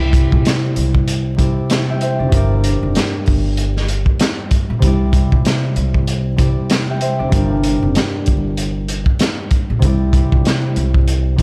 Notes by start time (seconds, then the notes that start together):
Already playing: C2 C3 G3 E4 D5
0.13 kick, closed hi-hat
0.32 A#1, kick
0.45 snare, closed hi-hat
0.76 C2, closed hi-hat
0.95 kick
1.08 closed hi-hat
1.36 C3 G3 E4, kick, closed hi-hat
1.40 D5
1.70 snare, closed hi-hat
1.90 E5 G5
2.01 C5 E5, closed hi-hat
2.19 F1 D5
2.28 G2 G3, kick, closed hi-hat
2.33 G1 A#4
2.37 D5
2.64 closed hi-hat
2.83 F1
2.95 snare, closed hi-hat
3.26 G1, kick, open hi-hat
3.57 closed hi-hat
3.77 snare
3.89 closed hi-hat
4.06 kick
4.20 snare, closed hi-hat
4.51 kick, closed hi-hat
4.70 A#1
4.79 C2 C3 G3, kick, closed hi-hat
4.84 E4 D5
5.13 kick, closed hi-hat
5.32 A#1, kick
5.45 snare, closed hi-hat
5.76 C2, closed hi-hat
5.94 kick
6.07 closed hi-hat
6.36 C3 G3 E4, kick, closed hi-hat
6.40 D5
6.70 snare, closed hi-hat
6.90 E5 G5
7.01 C5 E5, closed hi-hat
7.19 F1 D5
7.29 G1 G2 G3, kick, closed hi-hat
7.34 A#4 D5
7.64 closed hi-hat
7.82 F1
7.95 snare, closed hi-hat
8.26 G1, kick, closed hi-hat
8.57 closed hi-hat
8.88 closed hi-hat
9.06 kick
9.19 snare, closed hi-hat
9.51 kick, closed hi-hat
9.70 A#1
9.79 C2 C3 G3, kick, closed hi-hat
9.85 E4 D5
10.13 kick, closed hi-hat
10.32 A#1, kick
10.45 snare, closed hi-hat
10.76 C2, closed hi-hat
10.94 kick
11.08 closed hi-hat
11.36 C3 G3 E4, kick, closed hi-hat